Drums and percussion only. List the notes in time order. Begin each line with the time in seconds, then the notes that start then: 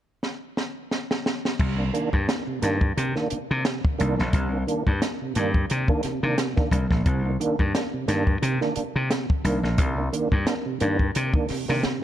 0.23 snare
0.57 snare
0.91 snare
1.11 snare
1.26 snare
1.45 snare
1.60 kick, crash
1.95 closed hi-hat
2.13 kick
2.29 snare, closed hi-hat
2.62 snare, closed hi-hat
2.81 kick
2.98 closed hi-hat
3.16 snare
3.30 closed hi-hat
3.65 snare, closed hi-hat
3.85 kick
4.00 closed hi-hat
4.19 snare
4.33 kick, closed hi-hat
4.68 closed hi-hat
4.87 kick
5.02 snare, closed hi-hat
5.35 closed hi-hat
5.54 kick
5.70 closed hi-hat
5.88 kick
6.03 snare, closed hi-hat
6.38 snare, closed hi-hat
6.56 kick, snare
6.71 kick, closed hi-hat
6.91 kick, snare
7.06 kick, closed hi-hat
7.41 closed hi-hat
7.59 kick
7.75 snare, closed hi-hat
8.08 snare, closed hi-hat
8.27 kick
8.43 closed hi-hat
8.61 snare
8.76 closed hi-hat
9.11 snare, closed hi-hat
9.30 kick
9.45 closed hi-hat
9.64 snare
9.78 kick, closed hi-hat
10.13 closed hi-hat
10.32 kick
10.47 snare, closed hi-hat
10.80 closed hi-hat
10.99 kick
11.15 closed hi-hat
11.34 kick
11.49 snare, open hi-hat
11.68 snare
11.83 snare, closed hi-hat